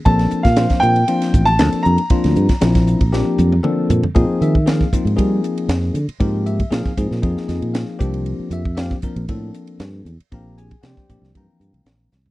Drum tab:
RD |xx-xxx-xxx-xxx-x|xx-xxx-x--------|x-x-x-xxx-xxx-xx|x-xxx-x-x-xxx-xx|
HH |--p---p---p---p-|--p---p---p---p-|--p---p---p---p-|--p---p---p---p-|
SD |-o-ooo---o--o---|-o-ooo--o-------|----o-------o---|----o--o-oo-o---|
T1 |----------------|----------oo----|----------------|----------------|
T2 |----------------|------------o---|----------------|----------------|
FT |----------------|--------------oo|----------------|----------------|
BD |o--o-o----o-----|o--o-o-o--------|o--o-oo-o-------|o--o-oo-o-----o-|

RD |x-x-x-xxx-xxx-xx|x-xxx-x-x-xxx---|
HH |--p---p---p---p-|--p---p---p---p-|
SD |----o-------o---|----o--o----o-o-|
T1 |----------------|----------------|
T2 |----------------|----------------|
FT |----------------|---------------o|
BD |---o-oo-o-------|o--o-oo-o-------|